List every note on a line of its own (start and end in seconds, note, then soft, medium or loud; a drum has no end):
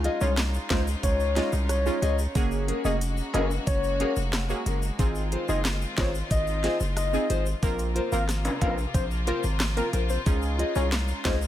0.00 0.17 G#3 loud
0.00 2.33 G#3 medium
0.00 0.17 C#4 medium
0.00 4.95 C#4 medium
0.00 0.17 D#4 medium
0.00 2.33 D#4 medium
0.00 0.17 F4 loud
0.00 2.33 F4 medium
0.04 0.21 F4 medium
0.04 0.21 G#4 medium
0.04 0.22 D#5 loud
0.04 closed hi-hat medium
0.21 0.58 C2 loud
0.21 0.34 G#3 medium
0.21 0.34 C#4 medium
0.21 0.35 D#4 medium
0.21 0.35 F4 medium
0.21 0.32 C#5 medium
0.21 shaker medium
0.37 snare loud
0.37 clap medium
0.37 closed hi-hat medium
0.37 shaker medium
0.54 shaker medium
0.70 0.95 C#2 medium
0.70 0.84 G#3 medium
0.70 0.84 C#4 medium
0.70 0.84 D#4 medium
0.70 0.87 F4 medium
0.70 0.84 F4 medium
0.70 0.87 G#4 medium
0.70 0.81 C5 medium
0.70 0.87 D#5 medium
0.70 kick loud
0.70 snare loud
0.70 clap medium
0.70 closed hi-hat medium
0.88 shaker medium
1.03 1.40 C#2 loud
1.03 1.50 C#5 medium
1.03 kick medium
1.03 closed hi-hat medium
1.03 shaker medium
1.20 shaker soft
1.36 1.50 G#3 medium
1.36 1.50 C#4 medium
1.36 1.50 D#4 medium
1.36 1.53 F4 medium
1.36 1.50 F4 medium
1.36 1.53 G#4 medium
1.36 1.53 D#5 medium
1.36 snare medium
1.36 closed hi-hat medium
1.53 1.90 C2 loud
1.53 shaker medium
1.69 2.16 C#5 medium
1.69 cross-stick medium
1.69 closed hi-hat medium
1.69 shaker medium
1.86 1.99 G#3 medium
1.86 1.99 C#4 medium
1.86 1.99 D#4 medium
1.86 2.00 F4 medium
1.86 shaker medium
2.02 2.27 C#2 medium
2.02 2.19 F4 medium
2.02 2.19 G#4 medium
2.02 2.19 D#5 medium
2.02 closed hi-hat medium
2.02 shaker medium
2.19 shaker medium
2.35 2.72 F#1 loud
2.35 7.59 G#3 medium
2.35 2.81 A#3 medium
2.35 4.96 A#3 medium
2.35 2.81 C#4 medium
2.35 4.96 F#4 medium
2.35 2.81 F#4 medium
2.35 2.81 G#4 loud
2.35 kick loud
2.35 closed hi-hat medium
2.35 shaker medium
2.51 shaker soft
2.68 2.85 C#4 medium
2.68 2.85 G#4 medium
2.68 2.85 A#4 loud
2.68 closed hi-hat medium
2.85 3.22 F1 loud
2.85 2.98 A#3 medium
2.85 2.98 C#4 medium
2.85 2.98 F#4 medium
2.85 2.98 G#4 medium
2.85 2.95 D#5 medium
2.85 shaker medium
3.01 closed hi-hat medium
3.01 shaker medium
3.17 shaker medium
3.34 3.59 F#1 medium
3.34 3.48 A#3 medium
3.34 3.51 C#4 medium
3.34 3.48 C#4 medium
3.34 3.48 F#4 medium
3.34 3.51 G#4 medium
3.34 3.48 G#4 medium
3.34 3.51 A#4 loud
3.34 3.45 D#5 medium
3.34 closed hi-hat medium
3.34 high timbale medium
3.51 shaker medium
3.67 4.04 F#1 loud
3.67 4.13 C#5 loud
3.67 kick medium
3.67 closed hi-hat medium
3.67 shaker medium
3.84 shaker medium
4.00 4.14 A#3 medium
4.00 4.16 C#4 medium
4.00 4.14 C#4 medium
4.00 4.14 F#4 medium
4.00 4.17 G#4 medium
4.00 4.14 G#4 medium
4.00 4.17 A#4 loud
4.00 closed hi-hat medium
4.16 4.54 F1 medium
4.16 shaker medium
4.33 cross-stick loud
4.33 snare loud
4.33 clap loud
4.33 closed hi-hat medium
4.33 shaker medium
4.49 4.63 A#3 medium
4.49 4.63 C#4 medium
4.49 4.63 F#4 medium
4.49 4.63 G#4 medium
4.49 shaker medium
4.66 4.91 F#1 medium
4.66 4.82 C#4 medium
4.66 4.83 G#4 medium
4.66 4.83 A#4 medium
4.66 closed hi-hat medium
4.66 shaker medium
4.82 shaker medium
4.99 5.36 G#1 loud
4.99 7.60 D#3 medium
4.99 5.44 C4 loud
4.99 7.60 C4 medium
4.99 5.44 D#4 medium
4.99 7.60 F4 medium
4.99 5.44 F4 medium
4.99 5.45 G#4 loud
4.99 kick loud
4.99 closed hi-hat medium
4.99 shaker medium
5.15 shaker soft
5.32 5.48 F4 medium
5.32 5.49 G#4 medium
5.32 5.49 C5 loud
5.32 closed hi-hat medium
5.48 5.86 F#1 medium
5.48 5.62 C4 medium
5.48 5.62 D#4 medium
5.48 5.62 F4 medium
5.48 5.62 G#4 medium
5.48 5.59 D#5 medium
5.48 shaker medium
5.65 snare loud
5.65 clap medium
5.65 closed hi-hat medium
5.65 shaker medium
5.82 shaker soft
5.97 6.23 G#1 loud
5.97 6.11 C4 medium
5.97 6.11 D#4 medium
5.97 6.14 F4 medium
5.97 6.11 F4 medium
5.97 6.15 G#4 medium
5.97 6.12 G#4 medium
5.97 6.15 C5 loud
5.97 6.09 C#5 medium
5.97 kick loud
5.97 snare loud
5.97 clap medium
5.97 closed hi-hat medium
6.15 shaker medium
6.31 6.68 G#1 loud
6.31 6.78 D#5 loud
6.31 kick medium
6.31 closed hi-hat medium
6.31 shaker medium
6.47 shaker soft
6.64 6.77 C4 medium
6.64 6.77 D#4 medium
6.64 6.80 F4 medium
6.64 6.77 F4 medium
6.64 6.77 G#4 medium
6.64 6.81 G#4 medium
6.64 6.81 C5 medium
6.64 snare medium
6.64 closed hi-hat medium
6.80 7.17 F#1 loud
6.80 shaker medium
6.97 7.43 D#5 medium
6.97 cross-stick medium
6.97 closed hi-hat medium
6.97 shaker medium
7.13 7.27 C4 medium
7.13 7.27 D#4 medium
7.13 7.27 F4 medium
7.13 7.27 G#4 medium
7.13 shaker medium
7.29 7.55 G#1 medium
7.29 7.46 F4 medium
7.29 7.46 G#4 medium
7.29 7.47 C5 loud
7.29 closed hi-hat medium
7.29 shaker medium
7.46 shaker medium
7.62 8.00 A#1 loud
7.62 10.24 C3 medium
7.62 10.24 F3 medium
7.62 10.24 A#3 medium
7.62 8.08 A#3 loud
7.62 8.08 C4 medium
7.62 11.47 F4 medium
7.62 8.08 F4 medium
7.62 8.08 A#4 loud
7.62 kick loud
7.62 closed hi-hat medium
7.62 shaker medium
7.79 closed hi-hat soft
7.79 shaker soft
7.95 8.12 F4 medium
7.95 8.12 A#4 medium
7.95 8.13 C5 medium
7.95 closed hi-hat medium
8.12 8.49 G#1 medium
8.12 8.26 A#3 medium
8.12 8.26 C4 medium
8.12 8.26 F4 medium
8.12 8.26 A#4 medium
8.12 8.23 F5 medium
8.12 shaker medium
8.29 cross-stick medium
8.29 snare medium
8.29 closed hi-hat medium
8.29 shaker medium
8.45 closed hi-hat medium
8.45 high timbale medium
8.45 shaker soft
8.61 8.86 A#1 medium
8.61 8.75 A#3 medium
8.61 8.75 C4 medium
8.61 8.78 F4 medium
8.61 8.75 F4 medium
8.61 8.78 A#4 medium
8.61 8.75 A#4 medium
8.61 8.78 C5 medium
8.61 8.72 F5 medium
8.61 kick loud
8.61 closed hi-hat medium
8.61 high timbale medium
8.78 shaker medium
8.94 9.32 A#1 loud
8.94 9.05 C5 medium
8.94 kick medium
8.94 closed hi-hat medium
8.94 shaker medium
9.11 shaker soft
9.27 9.41 A#3 medium
9.27 9.41 C4 medium
9.27 9.44 F4 loud
9.27 9.41 F4 medium
9.27 9.44 A#4 loud
9.27 9.41 A#4 medium
9.27 9.38 C5 medium
9.27 9.44 C5 loud
9.27 closed hi-hat medium
9.43 9.81 G#1 medium
9.43 shaker medium
9.60 cross-stick medium
9.60 snare loud
9.60 clap medium
9.60 closed hi-hat medium
9.60 shaker medium
9.76 9.90 A#3 medium
9.76 9.90 C4 medium
9.76 9.90 F4 medium
9.76 9.88 A#4 medium
9.76 9.91 A#4 medium
9.76 closed hi-hat medium
9.76 shaker medium
9.93 10.18 A#1 medium
9.93 10.10 F4 medium
9.93 10.10 A#4 medium
9.93 10.10 C5 loud
9.93 closed hi-hat medium
9.93 shaker medium
10.09 10.20 C5 medium
10.09 shaker medium
10.26 10.64 C#2 loud
10.26 11.47 G#3 medium
10.26 10.72 C#4 loud
10.26 11.47 C#4 medium
10.26 11.47 D#4 medium
10.26 10.72 D#4 medium
10.26 10.72 F4 medium
10.26 10.72 G#4 loud
10.26 kick loud
10.26 closed hi-hat medium
10.26 shaker medium
10.42 shaker soft
10.59 10.76 F4 medium
10.59 10.76 G#4 medium
10.59 10.76 D#5 medium
10.59 closed hi-hat medium
10.75 11.13 C2 loud
10.75 10.89 C#4 medium
10.75 10.89 D#4 medium
10.75 10.89 F4 medium
10.75 10.90 G#4 medium
10.75 10.86 C#5 medium
10.75 shaker medium
10.92 snare loud
10.92 clap medium
10.92 closed hi-hat medium
10.92 shaker medium
11.08 shaker soft
11.25 11.47 C#2 medium
11.25 11.39 C#4 medium
11.25 11.39 D#4 medium
11.25 11.42 F4 medium
11.25 11.39 F4 medium
11.25 11.42 G#4 medium
11.25 11.39 G#4 medium
11.25 11.36 C5 medium
11.25 11.42 D#5 medium
11.25 kick loud
11.25 snare loud
11.25 clap medium
11.25 closed hi-hat medium
11.42 shaker medium